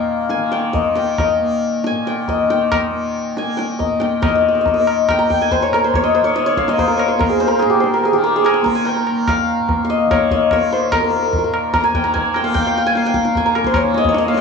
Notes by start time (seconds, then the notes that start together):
Already playing: A#2 D#3 A#3 D#5 F5 G5 A#5
0.29 G#5, tabla te
0.37 D#3
0.52 G5, tabla te
0.73 D#5, tabla tin, tabla ge
0.90 A#3
0.96 G5, tabla te
1.18 D#5, tabla na, tabla ge
1.39 A#3
1.84 G#5, tabla te
1.91 A#2
2.07 G5, tabla te
2.28 D#5, tabla tin, tabla ge
2.42 D#3
2.50 G5, tabla te
2.72 D#5, tabla na, tabla ge
2.91 A#3
3.37 A#3 G#5, tabla te
3.57 G5, tabla te
3.79 D#5, tabla tin, tabla ge
3.90 A#2
4.00 G5, tabla te
4.22 D#3 D#5, tabla na, tabla ge
4.28 D#5
4.35 D#5
4.42 D#5
4.48 D#5
4.55 D#5
4.61 D#5
4.66 D#5, tabla tin, tabla ge
4.70 A#3 D#5
4.80 D#5
4.87 tabla na
5.09 G5, tabla na, tabla ge
5.19 A#3 A#5
5.30 G5, tabla ge
5.41 G#5
5.51 C5, tabla tin, tabla ge
5.62 C#5
5.70 A#2 A#4, tabla na
5.84 C5
5.94 C#5, tabla tin, tabla ge
6.04 D#5
6.15 C5
6.21 D#3 C#5
6.36 D#5, tabla te
6.46 C#5, tabla te
6.57 F5, tabla ke
6.68 A#3 D#5, tabla te
6.79 C5, tabla tin, tabla ge
6.88 A#4
6.97 C#5, tabla na
7.08 C5
7.18 A#3 A#4, tabla na, tabla ge
7.29 G#4
7.40 C5, tabla te
7.47 A#4 C5
7.59 G#4, tabla te
7.66 A#2 G4
7.80 C5, tabla te
7.94 A#4
8.04 G#4, tabla tin
8.12 D#3 G4
8.24 A#4
8.36 G#4
8.44 G#5, tabla na
8.54 G5
8.62 A#3 A#5, tabla ke
8.75 G#5
8.85 G5, tabla tin
8.96 A#5
9.07 A#3, tabla na
9.28 F5, tabla na, tabla ge
9.59 A#2
9.69 tabla tin, tabla ge
9.85 F5
9.90 D#5
10.06 D#3
10.11 C#5, tabla na, tabla ge
10.31 D#5, tabla ge
10.51 A#3 C#5, tabla na, tabla ge
10.71 C5, tabla te
10.92 A#4, tabla na, tabla ge
10.99 A#3 A#4
11.04 A#4
11.10 A#4
11.16 A#4
11.22 A#4
11.28 A#4
11.32 A#4, tabla tin, tabla ge
11.39 A#4
11.44 A#2 A#4
11.54 tabla na
11.73 A#5, tabla na, tabla ge
11.81 G#5 A#5
11.94 D#3 G5, tabla ge
12.04 A#5
12.14 G#5, tabla tin, tabla ge
12.34 G5, tabla na
12.41 A#3 F5
12.54 G5, tabla tin, tabla ge
12.67 F5
12.78 G5
12.86 A#3 G#5
12.95 F5, tabla te
13.05 G5, tabla te
13.14 tabla ke
13.25 tabla te
13.35 A#2 G#5, tabla tin, tabla ge
13.46 A#5
13.55 A#4, tabla na
13.64 C5, tabla ke
13.74 C#5, tabla na, tabla ge
13.83 D#3
13.94 D#5, tabla te
14.04 D#5, tabla ge
14.09 C#5
14.14 D#5, tabla te
14.27 A#3 F5
14.34 G5, tabla te